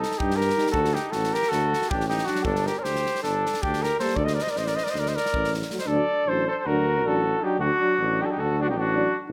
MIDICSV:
0, 0, Header, 1, 7, 480
1, 0, Start_track
1, 0, Tempo, 380228
1, 929, Time_signature, 9, 3, 24, 8
1, 11767, End_track
2, 0, Start_track
2, 0, Title_t, "Flugelhorn"
2, 0, Program_c, 0, 56
2, 0, Note_on_c, 0, 69, 83
2, 230, Note_on_c, 0, 67, 97
2, 249, Note_off_c, 0, 69, 0
2, 461, Note_on_c, 0, 70, 110
2, 480, Note_off_c, 0, 67, 0
2, 886, Note_off_c, 0, 70, 0
2, 894, Note_on_c, 0, 69, 105
2, 1188, Note_on_c, 0, 67, 88
2, 1207, Note_off_c, 0, 69, 0
2, 1394, Note_on_c, 0, 69, 92
2, 1413, Note_off_c, 0, 67, 0
2, 1683, Note_on_c, 0, 70, 102
2, 1701, Note_off_c, 0, 69, 0
2, 1882, Note_on_c, 0, 69, 100
2, 1901, Note_off_c, 0, 70, 0
2, 2384, Note_on_c, 0, 67, 94
2, 2403, Note_off_c, 0, 69, 0
2, 2624, Note_off_c, 0, 67, 0
2, 2632, Note_on_c, 0, 67, 96
2, 2841, Note_on_c, 0, 66, 94
2, 2860, Note_off_c, 0, 67, 0
2, 3069, Note_on_c, 0, 69, 95
2, 3087, Note_off_c, 0, 66, 0
2, 3348, Note_on_c, 0, 70, 87
2, 3367, Note_off_c, 0, 69, 0
2, 3509, Note_on_c, 0, 74, 67
2, 3528, Note_off_c, 0, 70, 0
2, 3557, Note_on_c, 0, 72, 105
2, 3576, Note_off_c, 0, 74, 0
2, 4064, Note_off_c, 0, 72, 0
2, 4071, Note_on_c, 0, 69, 99
2, 4572, Note_on_c, 0, 67, 99
2, 4591, Note_off_c, 0, 69, 0
2, 4826, Note_on_c, 0, 70, 103
2, 4845, Note_off_c, 0, 67, 0
2, 5042, Note_off_c, 0, 70, 0
2, 5048, Note_on_c, 0, 72, 84
2, 5255, Note_on_c, 0, 74, 92
2, 5274, Note_off_c, 0, 72, 0
2, 5360, Note_on_c, 0, 75, 89
2, 5379, Note_off_c, 0, 74, 0
2, 5473, Note_on_c, 0, 74, 88
2, 5492, Note_off_c, 0, 75, 0
2, 5582, Note_on_c, 0, 75, 88
2, 5601, Note_off_c, 0, 74, 0
2, 5680, Note_on_c, 0, 74, 82
2, 5699, Note_off_c, 0, 75, 0
2, 5782, Note_on_c, 0, 75, 82
2, 5801, Note_off_c, 0, 74, 0
2, 5871, Note_on_c, 0, 74, 101
2, 5890, Note_off_c, 0, 75, 0
2, 6010, Note_on_c, 0, 75, 92
2, 6029, Note_off_c, 0, 74, 0
2, 6111, Note_on_c, 0, 74, 98
2, 6130, Note_off_c, 0, 75, 0
2, 6200, Note_on_c, 0, 75, 82
2, 6219, Note_off_c, 0, 74, 0
2, 6291, Note_on_c, 0, 74, 90
2, 6310, Note_off_c, 0, 75, 0
2, 6412, Note_on_c, 0, 75, 75
2, 6431, Note_off_c, 0, 74, 0
2, 6510, Note_on_c, 0, 74, 107
2, 6529, Note_off_c, 0, 75, 0
2, 6979, Note_off_c, 0, 74, 0
2, 7332, Note_on_c, 0, 75, 56
2, 7424, Note_on_c, 0, 74, 125
2, 7443, Note_off_c, 0, 75, 0
2, 7931, Note_on_c, 0, 72, 110
2, 7950, Note_off_c, 0, 74, 0
2, 8195, Note_off_c, 0, 72, 0
2, 8205, Note_on_c, 0, 72, 99
2, 8321, Note_off_c, 0, 72, 0
2, 8321, Note_on_c, 0, 72, 89
2, 8415, Note_on_c, 0, 70, 104
2, 8434, Note_off_c, 0, 72, 0
2, 8924, Note_on_c, 0, 69, 98
2, 8943, Note_off_c, 0, 70, 0
2, 9392, Note_on_c, 0, 67, 91
2, 9411, Note_off_c, 0, 69, 0
2, 9586, Note_off_c, 0, 67, 0
2, 9598, Note_on_c, 0, 66, 113
2, 10370, Note_on_c, 0, 67, 99
2, 10389, Note_off_c, 0, 66, 0
2, 10422, Note_on_c, 0, 69, 79
2, 10441, Note_off_c, 0, 67, 0
2, 10492, Note_on_c, 0, 67, 90
2, 10511, Note_off_c, 0, 69, 0
2, 10592, Note_on_c, 0, 69, 92
2, 10611, Note_off_c, 0, 67, 0
2, 10884, Note_on_c, 0, 66, 97
2, 10903, Note_off_c, 0, 69, 0
2, 10963, Note_off_c, 0, 66, 0
2, 10971, Note_on_c, 0, 67, 83
2, 11106, Note_on_c, 0, 66, 98
2, 11125, Note_off_c, 0, 67, 0
2, 11591, Note_off_c, 0, 66, 0
2, 11767, End_track
3, 0, Start_track
3, 0, Title_t, "Trumpet"
3, 0, Program_c, 1, 56
3, 0, Note_on_c, 1, 63, 77
3, 200, Note_off_c, 1, 63, 0
3, 200, Note_on_c, 1, 63, 76
3, 455, Note_on_c, 1, 67, 84
3, 474, Note_off_c, 1, 63, 0
3, 885, Note_off_c, 1, 67, 0
3, 893, Note_on_c, 1, 66, 82
3, 1186, Note_on_c, 1, 63, 72
3, 1205, Note_off_c, 1, 66, 0
3, 1421, Note_on_c, 1, 66, 70
3, 1440, Note_off_c, 1, 63, 0
3, 1685, Note_on_c, 1, 67, 82
3, 1704, Note_off_c, 1, 66, 0
3, 1887, Note_on_c, 1, 66, 91
3, 1905, Note_off_c, 1, 67, 0
3, 2406, Note_on_c, 1, 62, 72
3, 2425, Note_off_c, 1, 66, 0
3, 2623, Note_off_c, 1, 62, 0
3, 2631, Note_on_c, 1, 63, 77
3, 2868, Note_on_c, 1, 62, 70
3, 2887, Note_off_c, 1, 63, 0
3, 3087, Note_off_c, 1, 62, 0
3, 3087, Note_on_c, 1, 62, 81
3, 3367, Note_on_c, 1, 67, 85
3, 3386, Note_off_c, 1, 62, 0
3, 3523, Note_on_c, 1, 70, 67
3, 3542, Note_off_c, 1, 67, 0
3, 3586, Note_on_c, 1, 67, 87
3, 3605, Note_off_c, 1, 70, 0
3, 4063, Note_off_c, 1, 67, 0
3, 4070, Note_on_c, 1, 62, 75
3, 4586, Note_off_c, 1, 62, 0
3, 4586, Note_on_c, 1, 62, 75
3, 4833, Note_on_c, 1, 67, 83
3, 4852, Note_off_c, 1, 62, 0
3, 5031, Note_off_c, 1, 67, 0
3, 5039, Note_on_c, 1, 69, 75
3, 5257, Note_off_c, 1, 69, 0
3, 5257, Note_on_c, 1, 69, 62
3, 5393, Note_on_c, 1, 72, 61
3, 5412, Note_off_c, 1, 69, 0
3, 5492, Note_on_c, 1, 70, 70
3, 5511, Note_off_c, 1, 72, 0
3, 5591, Note_on_c, 1, 72, 61
3, 5610, Note_off_c, 1, 70, 0
3, 5674, Note_on_c, 1, 70, 64
3, 5693, Note_off_c, 1, 72, 0
3, 5773, Note_on_c, 1, 72, 68
3, 5792, Note_off_c, 1, 70, 0
3, 5906, Note_on_c, 1, 70, 70
3, 5925, Note_off_c, 1, 72, 0
3, 6003, Note_on_c, 1, 72, 73
3, 6022, Note_off_c, 1, 70, 0
3, 6102, Note_on_c, 1, 70, 71
3, 6121, Note_off_c, 1, 72, 0
3, 6181, Note_on_c, 1, 72, 72
3, 6200, Note_off_c, 1, 70, 0
3, 6304, Note_on_c, 1, 70, 79
3, 6323, Note_off_c, 1, 72, 0
3, 6416, Note_on_c, 1, 72, 71
3, 6435, Note_off_c, 1, 70, 0
3, 6508, Note_on_c, 1, 70, 110
3, 6526, Note_off_c, 1, 72, 0
3, 6978, Note_off_c, 1, 70, 0
3, 7310, Note_on_c, 1, 72, 75
3, 7411, Note_on_c, 1, 69, 78
3, 7430, Note_off_c, 1, 72, 0
3, 7915, Note_off_c, 1, 69, 0
3, 7915, Note_on_c, 1, 69, 77
3, 8165, Note_off_c, 1, 69, 0
3, 8172, Note_on_c, 1, 69, 76
3, 8291, Note_off_c, 1, 69, 0
3, 8291, Note_on_c, 1, 69, 67
3, 8397, Note_on_c, 1, 66, 91
3, 8416, Note_off_c, 1, 69, 0
3, 8904, Note_off_c, 1, 66, 0
3, 8904, Note_on_c, 1, 66, 79
3, 9355, Note_on_c, 1, 63, 70
3, 9374, Note_off_c, 1, 66, 0
3, 9567, Note_off_c, 1, 63, 0
3, 9590, Note_on_c, 1, 62, 70
3, 10362, Note_on_c, 1, 63, 74
3, 10381, Note_off_c, 1, 62, 0
3, 10382, Note_on_c, 1, 66, 68
3, 10401, Note_off_c, 1, 63, 0
3, 10476, Note_on_c, 1, 63, 65
3, 10495, Note_off_c, 1, 66, 0
3, 10594, Note_on_c, 1, 66, 88
3, 10613, Note_off_c, 1, 63, 0
3, 10856, Note_on_c, 1, 62, 82
3, 10875, Note_off_c, 1, 66, 0
3, 10978, Note_off_c, 1, 62, 0
3, 10986, Note_on_c, 1, 63, 64
3, 11077, Note_on_c, 1, 62, 71
3, 11096, Note_off_c, 1, 63, 0
3, 11577, Note_off_c, 1, 62, 0
3, 11767, End_track
4, 0, Start_track
4, 0, Title_t, "Euphonium"
4, 0, Program_c, 2, 58
4, 696, Note_on_c, 2, 63, 63
4, 896, Note_off_c, 2, 63, 0
4, 2882, Note_on_c, 2, 62, 50
4, 3077, Note_off_c, 2, 62, 0
4, 5035, Note_on_c, 2, 58, 59
4, 5232, Note_off_c, 2, 58, 0
4, 7194, Note_on_c, 2, 57, 51
4, 7280, Note_off_c, 2, 57, 0
4, 7400, Note_on_c, 2, 62, 64
4, 7601, Note_off_c, 2, 62, 0
4, 7897, Note_on_c, 2, 62, 57
4, 8097, Note_off_c, 2, 62, 0
4, 8402, Note_on_c, 2, 62, 58
4, 8600, Note_off_c, 2, 62, 0
4, 8888, Note_on_c, 2, 62, 67
4, 9074, Note_off_c, 2, 62, 0
4, 9359, Note_on_c, 2, 62, 63
4, 9553, Note_off_c, 2, 62, 0
4, 9841, Note_on_c, 2, 62, 68
4, 10039, Note_off_c, 2, 62, 0
4, 10337, Note_on_c, 2, 62, 56
4, 10535, Note_off_c, 2, 62, 0
4, 10850, Note_on_c, 2, 62, 67
4, 11034, Note_off_c, 2, 62, 0
4, 11307, Note_on_c, 2, 62, 81
4, 11474, Note_off_c, 2, 62, 0
4, 11726, Note_on_c, 2, 63, 72
4, 11767, Note_off_c, 2, 63, 0
4, 11767, End_track
5, 0, Start_track
5, 0, Title_t, "Trombone"
5, 0, Program_c, 3, 57
5, 723, Note_on_c, 3, 55, 67
5, 918, Note_off_c, 3, 55, 0
5, 2900, Note_on_c, 3, 54, 67
5, 3092, Note_off_c, 3, 54, 0
5, 5055, Note_on_c, 3, 55, 66
5, 5248, Note_off_c, 3, 55, 0
5, 7213, Note_on_c, 3, 54, 65
5, 7296, Note_off_c, 3, 54, 0
5, 7431, Note_on_c, 3, 54, 56
5, 7625, Note_off_c, 3, 54, 0
5, 7932, Note_on_c, 3, 54, 57
5, 8125, Note_off_c, 3, 54, 0
5, 8420, Note_on_c, 3, 54, 68
5, 8614, Note_off_c, 3, 54, 0
5, 8915, Note_on_c, 3, 54, 62
5, 9095, Note_off_c, 3, 54, 0
5, 9371, Note_on_c, 3, 54, 81
5, 9562, Note_off_c, 3, 54, 0
5, 9854, Note_on_c, 3, 54, 76
5, 10049, Note_off_c, 3, 54, 0
5, 10342, Note_on_c, 3, 54, 59
5, 10538, Note_off_c, 3, 54, 0
5, 10842, Note_on_c, 3, 54, 55
5, 11027, Note_off_c, 3, 54, 0
5, 11300, Note_on_c, 3, 54, 68
5, 11469, Note_off_c, 3, 54, 0
5, 11767, End_track
6, 0, Start_track
6, 0, Title_t, "Tuba"
6, 0, Program_c, 4, 58
6, 271, Note_on_c, 4, 43, 94
6, 639, Note_off_c, 4, 43, 0
6, 924, Note_on_c, 4, 38, 106
6, 1200, Note_off_c, 4, 38, 0
6, 1424, Note_on_c, 4, 33, 83
6, 1698, Note_off_c, 4, 33, 0
6, 1913, Note_on_c, 4, 38, 92
6, 2190, Note_off_c, 4, 38, 0
6, 2416, Note_on_c, 4, 33, 82
6, 2789, Note_off_c, 4, 33, 0
6, 3094, Note_on_c, 4, 31, 118
6, 3367, Note_off_c, 4, 31, 0
6, 3594, Note_on_c, 4, 38, 82
6, 3866, Note_off_c, 4, 38, 0
6, 4087, Note_on_c, 4, 31, 78
6, 4360, Note_off_c, 4, 31, 0
6, 4586, Note_on_c, 4, 38, 80
6, 4956, Note_off_c, 4, 38, 0
6, 5248, Note_on_c, 4, 38, 111
6, 5523, Note_off_c, 4, 38, 0
6, 5751, Note_on_c, 4, 33, 72
6, 6024, Note_off_c, 4, 33, 0
6, 6237, Note_on_c, 4, 38, 73
6, 6512, Note_off_c, 4, 38, 0
6, 6730, Note_on_c, 4, 33, 80
6, 7104, Note_off_c, 4, 33, 0
6, 7413, Note_on_c, 4, 38, 102
6, 7565, Note_off_c, 4, 38, 0
6, 7904, Note_on_c, 4, 33, 72
6, 8177, Note_off_c, 4, 33, 0
6, 8409, Note_on_c, 4, 38, 92
6, 8899, Note_on_c, 4, 33, 82
6, 8918, Note_off_c, 4, 38, 0
6, 9268, Note_off_c, 4, 33, 0
6, 9577, Note_on_c, 4, 38, 107
6, 9725, Note_off_c, 4, 38, 0
6, 10075, Note_on_c, 4, 33, 95
6, 10343, Note_off_c, 4, 33, 0
6, 10566, Note_on_c, 4, 38, 85
6, 11048, Note_on_c, 4, 33, 94
6, 11067, Note_off_c, 4, 38, 0
6, 11418, Note_off_c, 4, 33, 0
6, 11767, End_track
7, 0, Start_track
7, 0, Title_t, "Drums"
7, 38, Note_on_c, 9, 38, 27
7, 148, Note_off_c, 9, 38, 0
7, 148, Note_on_c, 9, 38, 29
7, 255, Note_on_c, 9, 36, 81
7, 274, Note_off_c, 9, 38, 0
7, 381, Note_off_c, 9, 36, 0
7, 387, Note_on_c, 9, 38, 28
7, 513, Note_off_c, 9, 38, 0
7, 515, Note_on_c, 9, 38, 32
7, 627, Note_off_c, 9, 38, 0
7, 627, Note_on_c, 9, 38, 30
7, 736, Note_off_c, 9, 38, 0
7, 736, Note_on_c, 9, 38, 29
7, 840, Note_off_c, 9, 38, 0
7, 840, Note_on_c, 9, 38, 31
7, 930, Note_on_c, 9, 36, 86
7, 967, Note_off_c, 9, 38, 0
7, 1056, Note_off_c, 9, 36, 0
7, 1070, Note_on_c, 9, 38, 35
7, 1196, Note_off_c, 9, 38, 0
7, 1206, Note_on_c, 9, 38, 25
7, 1332, Note_off_c, 9, 38, 0
7, 1418, Note_on_c, 9, 38, 33
7, 1544, Note_off_c, 9, 38, 0
7, 1562, Note_on_c, 9, 38, 30
7, 1688, Note_off_c, 9, 38, 0
7, 1696, Note_on_c, 9, 38, 32
7, 1801, Note_off_c, 9, 38, 0
7, 1801, Note_on_c, 9, 38, 29
7, 1916, Note_off_c, 9, 38, 0
7, 1916, Note_on_c, 9, 38, 35
7, 2042, Note_off_c, 9, 38, 0
7, 2190, Note_on_c, 9, 38, 29
7, 2295, Note_off_c, 9, 38, 0
7, 2295, Note_on_c, 9, 38, 34
7, 2412, Note_on_c, 9, 36, 107
7, 2422, Note_off_c, 9, 38, 0
7, 2530, Note_on_c, 9, 38, 27
7, 2538, Note_off_c, 9, 36, 0
7, 2654, Note_off_c, 9, 38, 0
7, 2654, Note_on_c, 9, 38, 32
7, 2758, Note_off_c, 9, 38, 0
7, 2758, Note_on_c, 9, 38, 26
7, 2864, Note_off_c, 9, 38, 0
7, 2864, Note_on_c, 9, 38, 28
7, 2973, Note_off_c, 9, 38, 0
7, 2973, Note_on_c, 9, 38, 32
7, 3090, Note_on_c, 9, 36, 91
7, 3100, Note_off_c, 9, 38, 0
7, 3216, Note_off_c, 9, 36, 0
7, 3227, Note_on_c, 9, 38, 33
7, 3353, Note_off_c, 9, 38, 0
7, 3368, Note_on_c, 9, 38, 31
7, 3494, Note_off_c, 9, 38, 0
7, 3592, Note_on_c, 9, 38, 34
7, 3718, Note_off_c, 9, 38, 0
7, 3731, Note_on_c, 9, 38, 28
7, 3857, Note_off_c, 9, 38, 0
7, 3864, Note_on_c, 9, 38, 31
7, 3978, Note_off_c, 9, 38, 0
7, 3978, Note_on_c, 9, 38, 31
7, 4085, Note_off_c, 9, 38, 0
7, 4085, Note_on_c, 9, 38, 27
7, 4211, Note_off_c, 9, 38, 0
7, 4367, Note_on_c, 9, 38, 32
7, 4466, Note_off_c, 9, 38, 0
7, 4466, Note_on_c, 9, 38, 34
7, 4585, Note_on_c, 9, 36, 89
7, 4592, Note_off_c, 9, 38, 0
7, 4711, Note_off_c, 9, 36, 0
7, 4713, Note_on_c, 9, 38, 28
7, 4839, Note_off_c, 9, 38, 0
7, 4844, Note_on_c, 9, 38, 35
7, 4970, Note_off_c, 9, 38, 0
7, 5043, Note_on_c, 9, 38, 27
7, 5151, Note_off_c, 9, 38, 0
7, 5151, Note_on_c, 9, 38, 25
7, 5257, Note_on_c, 9, 36, 69
7, 5277, Note_off_c, 9, 38, 0
7, 5384, Note_off_c, 9, 36, 0
7, 5397, Note_on_c, 9, 38, 28
7, 5524, Note_off_c, 9, 38, 0
7, 5539, Note_on_c, 9, 38, 26
7, 5645, Note_off_c, 9, 38, 0
7, 5645, Note_on_c, 9, 38, 35
7, 5758, Note_off_c, 9, 38, 0
7, 5758, Note_on_c, 9, 38, 29
7, 5884, Note_off_c, 9, 38, 0
7, 5893, Note_on_c, 9, 38, 24
7, 6019, Note_off_c, 9, 38, 0
7, 6031, Note_on_c, 9, 38, 27
7, 6142, Note_off_c, 9, 38, 0
7, 6142, Note_on_c, 9, 38, 26
7, 6256, Note_off_c, 9, 38, 0
7, 6256, Note_on_c, 9, 38, 25
7, 6382, Note_off_c, 9, 38, 0
7, 6389, Note_on_c, 9, 38, 28
7, 6515, Note_off_c, 9, 38, 0
7, 6527, Note_on_c, 9, 38, 25
7, 6637, Note_off_c, 9, 38, 0
7, 6637, Note_on_c, 9, 38, 32
7, 6740, Note_on_c, 9, 36, 89
7, 6763, Note_off_c, 9, 38, 0
7, 6867, Note_off_c, 9, 36, 0
7, 6871, Note_on_c, 9, 38, 28
7, 6994, Note_off_c, 9, 38, 0
7, 6994, Note_on_c, 9, 38, 29
7, 7095, Note_off_c, 9, 38, 0
7, 7095, Note_on_c, 9, 38, 24
7, 7200, Note_off_c, 9, 38, 0
7, 7200, Note_on_c, 9, 38, 27
7, 7303, Note_off_c, 9, 38, 0
7, 7303, Note_on_c, 9, 38, 30
7, 7429, Note_off_c, 9, 38, 0
7, 11767, End_track
0, 0, End_of_file